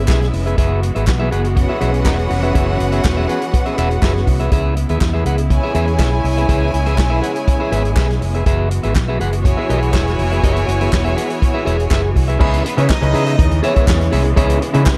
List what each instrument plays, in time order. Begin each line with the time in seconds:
Already playing: string section C#3 G#3 B3 E4, violin section C#4 B4 E5
0.08 fingered electric bass B1, clean electric guitar G#4 B4 E5, kick, snare, clap
0.11 clap
0.22 muted clean electric guitar stroke, snare, closed hi-hat
0.33 fingered electric bass F1, muted clean electric guitar stroke, open hi-hat
0.46 clean electric guitar G#4 B4 E5, closed hi-hat
0.58 fingered electric bass F#1, string section E3 F#4, clean electric guitar G#4 B4 E5, kick, closed hi-hat
0.82 muted clean electric guitar stroke, closed hi-hat
0.95 fingered electric bass G#1, clean electric guitar G#4 B4 E5, closed hi-hat
1.07 fingered electric bass B1, muted clean electric guitar stroke, kick, snare, clap
1.09 clap
1.20 clean electric guitar G#4 B4 E5
1.31 fingered electric bass F#1, clean electric guitar G#4 B4 F#5, closed hi-hat
1.44 muted clean electric guitar stroke, closed hi-hat
1.56 violin section C#4 B4 F#5, muted clean electric guitar stroke, kick, closed hi-hat
1.69 clean electric guitar G#4 B4 E5
1.81 fingered electric bass B1, clean electric guitar G#4 B4 E5, closed hi-hat
1.93 muted clean electric guitar stroke, closed hi-hat
2.05 fingered electric bass E1, clean electric guitar G#4 B4 E5, kick, snare, clap
2.08 clap
2.19 muted clean electric guitar stroke, closed hi-hat
2.30 fingered electric bass F1, muted clean electric guitar stroke, open hi-hat
2.43 clean electric guitar G#4 B4 E5, closed hi-hat
2.54 fingered electric bass F#1, clean electric guitar G#4 B4 E5, kick, closed hi-hat
2.79 fingered electric bass F#1, muted clean electric guitar stroke, closed hi-hat
2.92 clean electric guitar G#4 B4 E5, closed hi-hat
3.04 fingered electric bass E1, muted clean electric guitar stroke, kick, snare, clap
3.06 clap
3.17 clean electric guitar G#4 B4 E5
3.29 clean electric guitar G#4 B4 F#5, closed hi-hat
3.42 muted clean electric guitar stroke, closed hi-hat
3.53 muted clean electric guitar stroke, kick, closed hi-hat
3.66 clean electric guitar G#4 B4 E5, closed hi-hat
3.77 fingered electric bass E1, clean electric guitar G#4 B4 E5, clap, closed hi-hat
3.91 muted clean electric guitar stroke, closed hi-hat
4.02 fingered electric bass F#1, clean electric guitar G#4 B4 E5, kick, snare, clap
4.05 clap
4.15 muted clean electric guitar stroke, snare, closed hi-hat
4.27 fingered electric bass C2, muted clean electric guitar stroke, kick, open hi-hat
4.40 clean electric guitar G#4 B4 E5, closed hi-hat
4.52 fingered electric bass C#2, string section C#3 G#3 E4, clean electric guitar G#4 B4 E5, kick, closed hi-hat
4.76 muted clean electric guitar stroke, closed hi-hat
4.89 fingered electric bass D#2, clean electric guitar G#4 B4 E5, closed hi-hat
5.01 fingered electric bass E2, muted clean electric guitar stroke, kick, snare, clap
5.03 clap
5.14 clean electric guitar G#4 B4 E5
5.25 fingered electric bass C#2, clean electric guitar G#4 B4 F#5, closed hi-hat
5.38 muted clean electric guitar stroke, closed hi-hat
5.50 violin section E4 C#5 G#5, muted clean electric guitar stroke, kick, closed hi-hat
5.63 clean electric guitar G#4 B4 E5
5.75 fingered electric bass E2, clean electric guitar G#4 B4 E5, closed hi-hat
5.88 muted clean electric guitar stroke, closed hi-hat
5.98 fingered electric bass B1, clean electric guitar G#4 B4 E5, kick, snare, clap
6.02 clap
6.12 muted clean electric guitar stroke
6.24 fingered electric bass C2, muted clean electric guitar stroke, open hi-hat
6.37 clean electric guitar G#4 B4 E5, closed hi-hat
6.49 fingered electric bass C#2, clean electric guitar G#4 B4 E5, kick, closed hi-hat
6.73 fingered electric bass C#2, muted clean electric guitar stroke, closed hi-hat
6.86 clean electric guitar G#4 B4 E5, closed hi-hat
6.97 fingered electric bass B1, muted clean electric guitar stroke, kick, snare, clap
7.00 clap
7.10 clean electric guitar G#4 B4 E5
7.21 clean electric guitar G#4 B4 F#5, closed hi-hat
7.35 muted clean electric guitar stroke, closed hi-hat
7.47 muted clean electric guitar stroke, kick, closed hi-hat
7.60 clean electric guitar G#4 B4 E5
7.71 fingered electric bass G#1, clean electric guitar G#4 B4 E5, closed hi-hat
7.85 muted clean electric guitar stroke, closed hi-hat
7.96 fingered electric bass B1, clean electric guitar G#4 B4 E5, kick, snare, clap
7.99 clap
8.09 muted clean electric guitar stroke, snare, closed hi-hat
8.21 fingered electric bass F1, muted clean electric guitar stroke, open hi-hat
8.35 clean electric guitar G#4 B4 E5, closed hi-hat
8.46 fingered electric bass F#1, string section E3 B3 F#4, clean electric guitar G#4 B4 E5, kick, closed hi-hat
8.71 muted clean electric guitar stroke, closed hi-hat
8.83 fingered electric bass G#1, clean electric guitar G#4 B4 E5, closed hi-hat
8.95 fingered electric bass B1, muted clean electric guitar stroke, kick, snare, clap
8.97 clap
9.08 clean electric guitar G#4 B4 E5
9.20 fingered electric bass F#1, clean electric guitar G#4 B4 F#5, closed hi-hat
9.33 muted clean electric guitar stroke, closed hi-hat
9.45 violin section E4 C#5 G#5, muted clean electric guitar stroke, kick, closed hi-hat
9.57 clean electric guitar G#4 B4 E5
9.69 fingered electric bass B1, clean electric guitar G#4 B4 E5, closed hi-hat
9.82 muted clean electric guitar stroke, closed hi-hat
9.93 fingered electric bass E1, clean electric guitar G#4 B4 E5, kick, snare, clap
9.96 clap
10.07 muted clean electric guitar stroke, snare, closed hi-hat
10.19 fingered electric bass F1, muted clean electric guitar stroke, open hi-hat
10.32 clean electric guitar G#4 B4 E5, closed hi-hat
10.43 fingered electric bass F#1, clean electric guitar G#4 B4 E5, kick, closed hi-hat
10.56 closed hi-hat
10.68 fingered electric bass F#1, muted clean electric guitar stroke, closed hi-hat
10.81 clean electric guitar G#4 B4 E5, closed hi-hat
10.92 fingered electric bass E1, muted clean electric guitar stroke, kick, snare, clap
10.94 clap
11.04 clean electric guitar G#4 B4 E5, closed hi-hat
11.16 clean electric guitar G#4 B4 F#5, closed hi-hat
11.29 muted clean electric guitar stroke, closed hi-hat
11.41 muted clean electric guitar stroke, kick, closed hi-hat
11.54 clean electric guitar G#4 B4 E5
11.65 fingered electric bass E1, clean electric guitar G#4 B4 E5, closed hi-hat
11.79 muted clean electric guitar stroke, closed hi-hat
11.90 fingered electric bass F#1, clean electric guitar G#4 B4 E5, kick, snare, clap
11.93 clap
12.04 muted clean electric guitar stroke
12.15 fingered electric bass C2, muted clean electric guitar stroke, kick, open hi-hat
12.28 clean electric guitar G#4 B4 E5, closed hi-hat
12.39 fingered electric bass C#2, clav C#3 C#4 D#4 E4 B4, string section C#3 E3 G#3 B3, clean electric guitar G#4 B4 E5, kick, crash
12.53 closed hi-hat
12.65 violin section B3 B4, muted clean electric guitar stroke, closed hi-hat
12.77 clav C#3 C#4 D#4 E4 B4, fingered electric bass C#3, violin section C#4 C#5, clean electric guitar G#4 B4 E5, closed hi-hat
12.89 violin section D#4 D#5, muted clean electric guitar stroke, kick, snare, clap
12.91 clap
13.01 fingered electric bass C#2, clav C#3 C#4 D#4 E4 B4, muted clean electric guitar stroke, closed hi-hat
13.14 fingered electric bass C#3, clean electric guitar G#4 B4 E5, closed hi-hat
13.26 clean electric guitar G#4 B4 E5, closed hi-hat
13.38 fingered electric bass D#2, muted clean electric guitar stroke, kick, closed hi-hat
13.51 muted clean electric guitar stroke, closed hi-hat
13.63 violin section C#4 C#5, clean electric guitar G#4 B4 E5, closed hi-hat
13.76 clean electric guitar G#4 B4 E5, kick, closed hi-hat
13.88 fingered electric bass E2, muted clean electric guitar stroke, kick, snare, clap
13.90 clap
14.00 muted clean electric guitar stroke, snare, closed hi-hat
14.12 fingered electric bass C2, clean electric guitar G#4 B4 E5, open hi-hat
14.25 muted clean electric guitar stroke, closed hi-hat
14.36 fingered electric bass C#2, clav C#3 C#4 D#4 E4 C#5, clean electric guitar G#4 B4 E5, kick, closed hi-hat
14.50 closed hi-hat
14.61 muted clean electric guitar stroke, closed hi-hat
14.74 clav C#3 C#4 D#4 E4 B4, fingered electric bass C#3, clean electric guitar G#4 B4 E5, closed hi-hat
14.85 muted clean electric guitar stroke, kick, snare, clap
14.88 clap